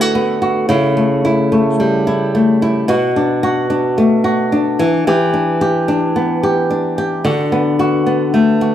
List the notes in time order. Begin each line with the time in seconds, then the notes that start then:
Already playing: D3 A3 B3
0.01 F#4
0.15 B3
0.42 F#4
0.69 C#3 E4
0.97 A3
1.25 E4
1.52 A3
1.80 G3
2.07 E4
2.35 A3
2.62 E4
2.88 B2 F#4
3.16 D4
3.43 F#4
3.70 D4
3.98 A3
4.24 F#4
4.52 D4
4.80 E3
5.07 E3 G4
5.34 D4
5.61 G4
5.88 D4
6.16 B3
6.43 G4
6.71 D4
6.98 G4
7.25 D3 F#4
7.52 B3
7.79 F#4
8.06 B3
8.34 A3
8.61 F#4